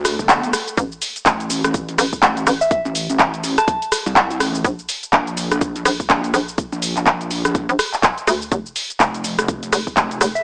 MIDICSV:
0, 0, Header, 1, 6, 480
1, 0, Start_track
1, 0, Tempo, 483871
1, 768, Time_signature, 4, 2, 24, 8
1, 10351, End_track
2, 0, Start_track
2, 0, Title_t, "Synth bell"
2, 0, Program_c, 0, 98
2, 2591, Note_on_c, 0, 76, 91
2, 2653, Note_off_c, 0, 76, 0
2, 2688, Note_on_c, 0, 76, 78
2, 2779, Note_off_c, 0, 76, 0
2, 3550, Note_on_c, 0, 81, 95
2, 3888, Note_off_c, 0, 81, 0
2, 10270, Note_on_c, 0, 76, 91
2, 10333, Note_off_c, 0, 76, 0
2, 10351, End_track
3, 0, Start_track
3, 0, Title_t, "FM bass"
3, 0, Program_c, 1, 39
3, 768, Note_on_c, 1, 33, 98
3, 993, Note_off_c, 1, 33, 0
3, 1968, Note_on_c, 1, 33, 99
3, 2193, Note_off_c, 1, 33, 0
3, 2448, Note_on_c, 1, 33, 93
3, 2808, Note_off_c, 1, 33, 0
3, 4608, Note_on_c, 1, 34, 100
3, 4832, Note_off_c, 1, 34, 0
3, 5807, Note_on_c, 1, 34, 100
3, 6032, Note_off_c, 1, 34, 0
3, 6287, Note_on_c, 1, 34, 92
3, 6648, Note_off_c, 1, 34, 0
3, 7631, Note_on_c, 1, 34, 96
3, 7712, Note_off_c, 1, 34, 0
3, 8208, Note_on_c, 1, 38, 93
3, 8432, Note_off_c, 1, 38, 0
3, 8448, Note_on_c, 1, 29, 103
3, 8673, Note_off_c, 1, 29, 0
3, 9648, Note_on_c, 1, 29, 101
3, 9872, Note_off_c, 1, 29, 0
3, 10128, Note_on_c, 1, 29, 97
3, 10351, Note_off_c, 1, 29, 0
3, 10351, End_track
4, 0, Start_track
4, 0, Title_t, "Wobble bass"
4, 0, Program_c, 2, 39
4, 0, Note_on_c, 2, 38, 102
4, 168, Note_off_c, 2, 38, 0
4, 191, Note_on_c, 2, 31, 94
4, 513, Note_off_c, 2, 31, 0
4, 1248, Note_on_c, 2, 33, 91
4, 1608, Note_off_c, 2, 33, 0
4, 1631, Note_on_c, 2, 33, 102
4, 1952, Note_off_c, 2, 33, 0
4, 2208, Note_on_c, 2, 33, 96
4, 2433, Note_off_c, 2, 33, 0
4, 2831, Note_on_c, 2, 33, 102
4, 3048, Note_off_c, 2, 33, 0
4, 3071, Note_on_c, 2, 33, 98
4, 3152, Note_off_c, 2, 33, 0
4, 3168, Note_on_c, 2, 33, 93
4, 3528, Note_off_c, 2, 33, 0
4, 4030, Note_on_c, 2, 36, 95
4, 4352, Note_off_c, 2, 36, 0
4, 4368, Note_on_c, 2, 33, 98
4, 4592, Note_off_c, 2, 33, 0
4, 5088, Note_on_c, 2, 34, 95
4, 5448, Note_off_c, 2, 34, 0
4, 5471, Note_on_c, 2, 34, 103
4, 5792, Note_off_c, 2, 34, 0
4, 6048, Note_on_c, 2, 34, 96
4, 6273, Note_off_c, 2, 34, 0
4, 6671, Note_on_c, 2, 34, 99
4, 6888, Note_off_c, 2, 34, 0
4, 6911, Note_on_c, 2, 34, 99
4, 6993, Note_off_c, 2, 34, 0
4, 7008, Note_on_c, 2, 34, 94
4, 7368, Note_off_c, 2, 34, 0
4, 7391, Note_on_c, 2, 34, 101
4, 7608, Note_off_c, 2, 34, 0
4, 8928, Note_on_c, 2, 29, 90
4, 9288, Note_off_c, 2, 29, 0
4, 9311, Note_on_c, 2, 29, 99
4, 9632, Note_off_c, 2, 29, 0
4, 9888, Note_on_c, 2, 29, 98
4, 10113, Note_off_c, 2, 29, 0
4, 10351, End_track
5, 0, Start_track
5, 0, Title_t, "Swell"
5, 0, Program_c, 3, 103
5, 0, Note_on_c, 3, 60, 64
5, 768, Note_off_c, 3, 60, 0
5, 10351, End_track
6, 0, Start_track
6, 0, Title_t, "Drums"
6, 48, Note_on_c, 9, 37, 84
6, 48, Note_on_c, 9, 46, 103
6, 49, Note_on_c, 9, 82, 82
6, 148, Note_off_c, 9, 37, 0
6, 148, Note_off_c, 9, 46, 0
6, 148, Note_off_c, 9, 82, 0
6, 191, Note_on_c, 9, 36, 61
6, 192, Note_on_c, 9, 82, 35
6, 288, Note_off_c, 9, 36, 0
6, 288, Note_on_c, 9, 36, 112
6, 288, Note_on_c, 9, 42, 83
6, 289, Note_off_c, 9, 82, 0
6, 289, Note_on_c, 9, 39, 120
6, 289, Note_on_c, 9, 82, 47
6, 388, Note_off_c, 9, 36, 0
6, 388, Note_off_c, 9, 39, 0
6, 388, Note_off_c, 9, 42, 0
6, 388, Note_off_c, 9, 82, 0
6, 431, Note_on_c, 9, 42, 40
6, 432, Note_on_c, 9, 82, 23
6, 528, Note_on_c, 9, 37, 79
6, 528, Note_on_c, 9, 46, 92
6, 529, Note_off_c, 9, 82, 0
6, 529, Note_on_c, 9, 82, 81
6, 530, Note_off_c, 9, 42, 0
6, 627, Note_off_c, 9, 37, 0
6, 627, Note_off_c, 9, 46, 0
6, 628, Note_off_c, 9, 82, 0
6, 671, Note_on_c, 9, 42, 41
6, 672, Note_on_c, 9, 82, 37
6, 768, Note_off_c, 9, 42, 0
6, 768, Note_on_c, 9, 42, 85
6, 769, Note_off_c, 9, 82, 0
6, 769, Note_on_c, 9, 36, 123
6, 769, Note_on_c, 9, 82, 47
6, 868, Note_off_c, 9, 36, 0
6, 868, Note_off_c, 9, 42, 0
6, 868, Note_off_c, 9, 82, 0
6, 912, Note_on_c, 9, 82, 23
6, 1008, Note_on_c, 9, 46, 108
6, 1009, Note_off_c, 9, 82, 0
6, 1009, Note_on_c, 9, 82, 80
6, 1107, Note_off_c, 9, 46, 0
6, 1108, Note_off_c, 9, 82, 0
6, 1151, Note_on_c, 9, 42, 39
6, 1152, Note_on_c, 9, 82, 34
6, 1248, Note_off_c, 9, 42, 0
6, 1248, Note_on_c, 9, 36, 124
6, 1248, Note_on_c, 9, 42, 82
6, 1249, Note_off_c, 9, 82, 0
6, 1249, Note_on_c, 9, 39, 123
6, 1249, Note_on_c, 9, 82, 45
6, 1347, Note_off_c, 9, 42, 0
6, 1348, Note_off_c, 9, 36, 0
6, 1348, Note_off_c, 9, 39, 0
6, 1348, Note_off_c, 9, 82, 0
6, 1391, Note_on_c, 9, 42, 40
6, 1392, Note_on_c, 9, 82, 23
6, 1488, Note_off_c, 9, 82, 0
6, 1488, Note_on_c, 9, 46, 89
6, 1488, Note_on_c, 9, 82, 77
6, 1490, Note_off_c, 9, 42, 0
6, 1587, Note_off_c, 9, 46, 0
6, 1588, Note_off_c, 9, 82, 0
6, 1631, Note_on_c, 9, 37, 77
6, 1631, Note_on_c, 9, 42, 55
6, 1632, Note_on_c, 9, 82, 34
6, 1728, Note_off_c, 9, 42, 0
6, 1728, Note_on_c, 9, 36, 121
6, 1728, Note_on_c, 9, 42, 80
6, 1729, Note_off_c, 9, 82, 0
6, 1729, Note_on_c, 9, 82, 44
6, 1730, Note_off_c, 9, 37, 0
6, 1827, Note_off_c, 9, 42, 0
6, 1828, Note_off_c, 9, 36, 0
6, 1828, Note_off_c, 9, 82, 0
6, 1871, Note_on_c, 9, 42, 58
6, 1871, Note_on_c, 9, 82, 24
6, 1968, Note_off_c, 9, 82, 0
6, 1968, Note_on_c, 9, 37, 81
6, 1968, Note_on_c, 9, 46, 107
6, 1968, Note_on_c, 9, 82, 82
6, 1970, Note_off_c, 9, 42, 0
6, 2067, Note_off_c, 9, 37, 0
6, 2067, Note_off_c, 9, 46, 0
6, 2068, Note_off_c, 9, 82, 0
6, 2111, Note_on_c, 9, 36, 63
6, 2111, Note_on_c, 9, 82, 33
6, 2208, Note_off_c, 9, 36, 0
6, 2208, Note_off_c, 9, 82, 0
6, 2208, Note_on_c, 9, 36, 116
6, 2208, Note_on_c, 9, 42, 84
6, 2208, Note_on_c, 9, 82, 45
6, 2209, Note_on_c, 9, 39, 123
6, 2307, Note_off_c, 9, 36, 0
6, 2307, Note_off_c, 9, 42, 0
6, 2308, Note_off_c, 9, 39, 0
6, 2308, Note_off_c, 9, 82, 0
6, 2351, Note_on_c, 9, 42, 40
6, 2351, Note_on_c, 9, 82, 23
6, 2448, Note_off_c, 9, 82, 0
6, 2448, Note_on_c, 9, 37, 78
6, 2448, Note_on_c, 9, 46, 95
6, 2448, Note_on_c, 9, 82, 81
6, 2450, Note_off_c, 9, 42, 0
6, 2547, Note_off_c, 9, 37, 0
6, 2547, Note_off_c, 9, 46, 0
6, 2547, Note_off_c, 9, 82, 0
6, 2591, Note_on_c, 9, 82, 36
6, 2688, Note_off_c, 9, 82, 0
6, 2688, Note_on_c, 9, 36, 126
6, 2688, Note_on_c, 9, 42, 84
6, 2688, Note_on_c, 9, 82, 46
6, 2787, Note_off_c, 9, 36, 0
6, 2787, Note_off_c, 9, 42, 0
6, 2788, Note_off_c, 9, 82, 0
6, 2831, Note_on_c, 9, 82, 22
6, 2928, Note_off_c, 9, 82, 0
6, 2928, Note_on_c, 9, 46, 112
6, 2928, Note_on_c, 9, 82, 76
6, 3027, Note_off_c, 9, 46, 0
6, 3028, Note_off_c, 9, 82, 0
6, 3071, Note_on_c, 9, 42, 38
6, 3071, Note_on_c, 9, 82, 33
6, 3168, Note_off_c, 9, 42, 0
6, 3168, Note_off_c, 9, 82, 0
6, 3168, Note_on_c, 9, 36, 127
6, 3168, Note_on_c, 9, 42, 78
6, 3168, Note_on_c, 9, 82, 43
6, 3169, Note_on_c, 9, 39, 124
6, 3267, Note_off_c, 9, 36, 0
6, 3267, Note_off_c, 9, 42, 0
6, 3268, Note_off_c, 9, 39, 0
6, 3268, Note_off_c, 9, 82, 0
6, 3311, Note_on_c, 9, 42, 39
6, 3311, Note_on_c, 9, 82, 23
6, 3408, Note_on_c, 9, 46, 95
6, 3409, Note_off_c, 9, 82, 0
6, 3409, Note_on_c, 9, 82, 75
6, 3410, Note_off_c, 9, 42, 0
6, 3507, Note_off_c, 9, 46, 0
6, 3508, Note_off_c, 9, 82, 0
6, 3551, Note_on_c, 9, 37, 80
6, 3551, Note_on_c, 9, 42, 55
6, 3551, Note_on_c, 9, 82, 33
6, 3648, Note_off_c, 9, 42, 0
6, 3648, Note_on_c, 9, 36, 123
6, 3648, Note_on_c, 9, 42, 83
6, 3649, Note_off_c, 9, 82, 0
6, 3649, Note_on_c, 9, 82, 44
6, 3650, Note_off_c, 9, 37, 0
6, 3747, Note_off_c, 9, 36, 0
6, 3747, Note_off_c, 9, 42, 0
6, 3748, Note_off_c, 9, 82, 0
6, 3791, Note_on_c, 9, 42, 57
6, 3792, Note_on_c, 9, 82, 23
6, 3888, Note_on_c, 9, 37, 80
6, 3888, Note_on_c, 9, 46, 111
6, 3889, Note_off_c, 9, 82, 0
6, 3889, Note_on_c, 9, 82, 77
6, 3890, Note_off_c, 9, 42, 0
6, 3987, Note_off_c, 9, 37, 0
6, 3987, Note_off_c, 9, 46, 0
6, 3988, Note_off_c, 9, 82, 0
6, 4031, Note_on_c, 9, 82, 33
6, 4128, Note_on_c, 9, 36, 123
6, 4128, Note_on_c, 9, 42, 80
6, 4129, Note_off_c, 9, 82, 0
6, 4129, Note_on_c, 9, 39, 127
6, 4129, Note_on_c, 9, 82, 44
6, 4227, Note_off_c, 9, 36, 0
6, 4227, Note_off_c, 9, 42, 0
6, 4228, Note_off_c, 9, 39, 0
6, 4228, Note_off_c, 9, 82, 0
6, 4271, Note_on_c, 9, 42, 37
6, 4271, Note_on_c, 9, 82, 22
6, 4368, Note_on_c, 9, 37, 78
6, 4368, Note_on_c, 9, 46, 96
6, 4369, Note_off_c, 9, 82, 0
6, 4369, Note_on_c, 9, 82, 78
6, 4370, Note_off_c, 9, 42, 0
6, 4467, Note_off_c, 9, 37, 0
6, 4467, Note_off_c, 9, 46, 0
6, 4468, Note_off_c, 9, 82, 0
6, 4512, Note_on_c, 9, 82, 34
6, 4608, Note_on_c, 9, 36, 127
6, 4608, Note_on_c, 9, 42, 82
6, 4609, Note_off_c, 9, 82, 0
6, 4609, Note_on_c, 9, 82, 45
6, 4707, Note_off_c, 9, 36, 0
6, 4707, Note_off_c, 9, 42, 0
6, 4708, Note_off_c, 9, 82, 0
6, 4752, Note_on_c, 9, 82, 22
6, 4848, Note_on_c, 9, 46, 110
6, 4849, Note_off_c, 9, 82, 0
6, 4849, Note_on_c, 9, 82, 76
6, 4947, Note_off_c, 9, 46, 0
6, 4948, Note_off_c, 9, 82, 0
6, 4991, Note_on_c, 9, 42, 36
6, 4991, Note_on_c, 9, 82, 33
6, 5088, Note_off_c, 9, 42, 0
6, 5088, Note_on_c, 9, 36, 127
6, 5088, Note_on_c, 9, 42, 76
6, 5089, Note_off_c, 9, 82, 0
6, 5089, Note_on_c, 9, 39, 123
6, 5089, Note_on_c, 9, 82, 43
6, 5187, Note_off_c, 9, 36, 0
6, 5187, Note_off_c, 9, 42, 0
6, 5188, Note_off_c, 9, 39, 0
6, 5188, Note_off_c, 9, 82, 0
6, 5231, Note_on_c, 9, 42, 37
6, 5231, Note_on_c, 9, 82, 23
6, 5328, Note_on_c, 9, 46, 96
6, 5329, Note_off_c, 9, 82, 0
6, 5329, Note_on_c, 9, 82, 73
6, 5330, Note_off_c, 9, 42, 0
6, 5427, Note_off_c, 9, 46, 0
6, 5428, Note_off_c, 9, 82, 0
6, 5471, Note_on_c, 9, 37, 79
6, 5471, Note_on_c, 9, 42, 52
6, 5471, Note_on_c, 9, 82, 33
6, 5568, Note_off_c, 9, 42, 0
6, 5568, Note_on_c, 9, 36, 126
6, 5568, Note_on_c, 9, 42, 74
6, 5569, Note_off_c, 9, 82, 0
6, 5569, Note_on_c, 9, 82, 42
6, 5570, Note_off_c, 9, 37, 0
6, 5667, Note_off_c, 9, 36, 0
6, 5667, Note_off_c, 9, 42, 0
6, 5668, Note_off_c, 9, 82, 0
6, 5711, Note_on_c, 9, 42, 54
6, 5711, Note_on_c, 9, 82, 23
6, 5808, Note_off_c, 9, 82, 0
6, 5808, Note_on_c, 9, 37, 85
6, 5808, Note_on_c, 9, 46, 110
6, 5808, Note_on_c, 9, 82, 75
6, 5810, Note_off_c, 9, 42, 0
6, 5907, Note_off_c, 9, 37, 0
6, 5907, Note_off_c, 9, 46, 0
6, 5908, Note_off_c, 9, 82, 0
6, 5951, Note_on_c, 9, 36, 68
6, 5951, Note_on_c, 9, 82, 32
6, 6048, Note_off_c, 9, 36, 0
6, 6048, Note_on_c, 9, 36, 127
6, 6048, Note_on_c, 9, 42, 78
6, 6049, Note_off_c, 9, 82, 0
6, 6049, Note_on_c, 9, 39, 120
6, 6049, Note_on_c, 9, 82, 43
6, 6147, Note_off_c, 9, 36, 0
6, 6147, Note_off_c, 9, 42, 0
6, 6148, Note_off_c, 9, 39, 0
6, 6148, Note_off_c, 9, 82, 0
6, 6191, Note_on_c, 9, 42, 37
6, 6192, Note_on_c, 9, 82, 21
6, 6288, Note_on_c, 9, 37, 80
6, 6288, Note_on_c, 9, 46, 102
6, 6289, Note_off_c, 9, 82, 0
6, 6289, Note_on_c, 9, 82, 75
6, 6290, Note_off_c, 9, 42, 0
6, 6387, Note_off_c, 9, 37, 0
6, 6387, Note_off_c, 9, 46, 0
6, 6388, Note_off_c, 9, 82, 0
6, 6432, Note_on_c, 9, 82, 33
6, 6528, Note_on_c, 9, 36, 127
6, 6528, Note_on_c, 9, 42, 79
6, 6529, Note_off_c, 9, 82, 0
6, 6529, Note_on_c, 9, 82, 46
6, 6627, Note_off_c, 9, 36, 0
6, 6627, Note_off_c, 9, 42, 0
6, 6628, Note_off_c, 9, 82, 0
6, 6671, Note_on_c, 9, 82, 23
6, 6768, Note_on_c, 9, 46, 109
6, 6769, Note_off_c, 9, 82, 0
6, 6769, Note_on_c, 9, 82, 77
6, 6867, Note_off_c, 9, 46, 0
6, 6868, Note_off_c, 9, 82, 0
6, 6911, Note_on_c, 9, 42, 36
6, 6911, Note_on_c, 9, 82, 32
6, 6912, Note_on_c, 9, 39, 37
6, 7008, Note_off_c, 9, 42, 0
6, 7008, Note_off_c, 9, 82, 0
6, 7008, Note_on_c, 9, 36, 127
6, 7008, Note_on_c, 9, 42, 73
6, 7008, Note_on_c, 9, 82, 43
6, 7009, Note_off_c, 9, 39, 0
6, 7009, Note_on_c, 9, 39, 114
6, 7107, Note_off_c, 9, 36, 0
6, 7107, Note_off_c, 9, 42, 0
6, 7108, Note_off_c, 9, 39, 0
6, 7108, Note_off_c, 9, 82, 0
6, 7151, Note_on_c, 9, 42, 36
6, 7151, Note_on_c, 9, 82, 22
6, 7248, Note_off_c, 9, 82, 0
6, 7248, Note_on_c, 9, 46, 94
6, 7248, Note_on_c, 9, 82, 75
6, 7250, Note_off_c, 9, 42, 0
6, 7347, Note_off_c, 9, 46, 0
6, 7348, Note_off_c, 9, 82, 0
6, 7391, Note_on_c, 9, 37, 84
6, 7391, Note_on_c, 9, 42, 52
6, 7391, Note_on_c, 9, 82, 33
6, 7488, Note_off_c, 9, 42, 0
6, 7488, Note_on_c, 9, 36, 123
6, 7488, Note_on_c, 9, 42, 74
6, 7489, Note_off_c, 9, 82, 0
6, 7489, Note_on_c, 9, 82, 44
6, 7490, Note_off_c, 9, 37, 0
6, 7587, Note_off_c, 9, 36, 0
6, 7587, Note_off_c, 9, 42, 0
6, 7588, Note_off_c, 9, 82, 0
6, 7631, Note_on_c, 9, 42, 53
6, 7632, Note_on_c, 9, 82, 22
6, 7728, Note_on_c, 9, 37, 84
6, 7728, Note_on_c, 9, 46, 114
6, 7729, Note_off_c, 9, 82, 0
6, 7729, Note_on_c, 9, 82, 78
6, 7730, Note_off_c, 9, 42, 0
6, 7827, Note_off_c, 9, 37, 0
6, 7827, Note_off_c, 9, 46, 0
6, 7828, Note_off_c, 9, 82, 0
6, 7872, Note_on_c, 9, 39, 37
6, 7872, Note_on_c, 9, 82, 33
6, 7968, Note_on_c, 9, 36, 126
6, 7968, Note_on_c, 9, 42, 75
6, 7969, Note_off_c, 9, 39, 0
6, 7969, Note_off_c, 9, 82, 0
6, 7969, Note_on_c, 9, 39, 120
6, 7969, Note_on_c, 9, 82, 42
6, 8067, Note_off_c, 9, 36, 0
6, 8068, Note_off_c, 9, 42, 0
6, 8068, Note_off_c, 9, 82, 0
6, 8069, Note_off_c, 9, 39, 0
6, 8111, Note_on_c, 9, 42, 36
6, 8112, Note_on_c, 9, 82, 22
6, 8208, Note_on_c, 9, 37, 81
6, 8208, Note_on_c, 9, 46, 97
6, 8209, Note_off_c, 9, 82, 0
6, 8209, Note_on_c, 9, 82, 78
6, 8210, Note_off_c, 9, 42, 0
6, 8307, Note_off_c, 9, 37, 0
6, 8307, Note_off_c, 9, 46, 0
6, 8308, Note_off_c, 9, 82, 0
6, 8352, Note_on_c, 9, 82, 34
6, 8448, Note_on_c, 9, 36, 120
6, 8448, Note_on_c, 9, 42, 82
6, 8449, Note_off_c, 9, 82, 0
6, 8449, Note_on_c, 9, 82, 47
6, 8547, Note_off_c, 9, 36, 0
6, 8548, Note_off_c, 9, 42, 0
6, 8548, Note_off_c, 9, 82, 0
6, 8592, Note_on_c, 9, 82, 24
6, 8688, Note_on_c, 9, 46, 106
6, 8689, Note_off_c, 9, 82, 0
6, 8689, Note_on_c, 9, 82, 81
6, 8787, Note_off_c, 9, 46, 0
6, 8788, Note_off_c, 9, 82, 0
6, 8831, Note_on_c, 9, 42, 36
6, 8831, Note_on_c, 9, 82, 34
6, 8928, Note_off_c, 9, 42, 0
6, 8928, Note_on_c, 9, 36, 123
6, 8928, Note_on_c, 9, 42, 73
6, 8929, Note_off_c, 9, 82, 0
6, 8929, Note_on_c, 9, 39, 110
6, 8929, Note_on_c, 9, 82, 45
6, 9027, Note_off_c, 9, 36, 0
6, 9027, Note_off_c, 9, 42, 0
6, 9028, Note_off_c, 9, 39, 0
6, 9028, Note_off_c, 9, 82, 0
6, 9071, Note_on_c, 9, 42, 37
6, 9072, Note_on_c, 9, 82, 24
6, 9168, Note_on_c, 9, 46, 89
6, 9169, Note_off_c, 9, 82, 0
6, 9169, Note_on_c, 9, 82, 79
6, 9170, Note_off_c, 9, 42, 0
6, 9267, Note_off_c, 9, 46, 0
6, 9268, Note_off_c, 9, 82, 0
6, 9311, Note_on_c, 9, 37, 85
6, 9311, Note_on_c, 9, 42, 52
6, 9311, Note_on_c, 9, 82, 35
6, 9408, Note_off_c, 9, 42, 0
6, 9408, Note_on_c, 9, 36, 118
6, 9408, Note_on_c, 9, 42, 77
6, 9409, Note_off_c, 9, 82, 0
6, 9409, Note_on_c, 9, 82, 45
6, 9410, Note_off_c, 9, 37, 0
6, 9507, Note_off_c, 9, 42, 0
6, 9508, Note_off_c, 9, 36, 0
6, 9508, Note_off_c, 9, 82, 0
6, 9551, Note_on_c, 9, 42, 54
6, 9552, Note_on_c, 9, 82, 23
6, 9648, Note_on_c, 9, 37, 89
6, 9648, Note_on_c, 9, 46, 108
6, 9649, Note_off_c, 9, 82, 0
6, 9649, Note_on_c, 9, 82, 83
6, 9650, Note_off_c, 9, 42, 0
6, 9747, Note_off_c, 9, 37, 0
6, 9747, Note_off_c, 9, 46, 0
6, 9748, Note_off_c, 9, 82, 0
6, 9791, Note_on_c, 9, 36, 63
6, 9791, Note_on_c, 9, 82, 34
6, 9888, Note_off_c, 9, 36, 0
6, 9888, Note_on_c, 9, 36, 118
6, 9888, Note_on_c, 9, 42, 75
6, 9889, Note_off_c, 9, 82, 0
6, 9889, Note_on_c, 9, 39, 112
6, 9889, Note_on_c, 9, 82, 45
6, 9987, Note_off_c, 9, 36, 0
6, 9987, Note_off_c, 9, 42, 0
6, 9988, Note_off_c, 9, 39, 0
6, 9988, Note_off_c, 9, 82, 0
6, 10031, Note_on_c, 9, 42, 36
6, 10031, Note_on_c, 9, 82, 23
6, 10128, Note_on_c, 9, 37, 85
6, 10128, Note_on_c, 9, 46, 92
6, 10129, Note_off_c, 9, 82, 0
6, 10129, Note_on_c, 9, 82, 83
6, 10130, Note_off_c, 9, 42, 0
6, 10227, Note_off_c, 9, 37, 0
6, 10227, Note_off_c, 9, 46, 0
6, 10228, Note_off_c, 9, 82, 0
6, 10271, Note_on_c, 9, 82, 36
6, 10351, Note_off_c, 9, 82, 0
6, 10351, End_track
0, 0, End_of_file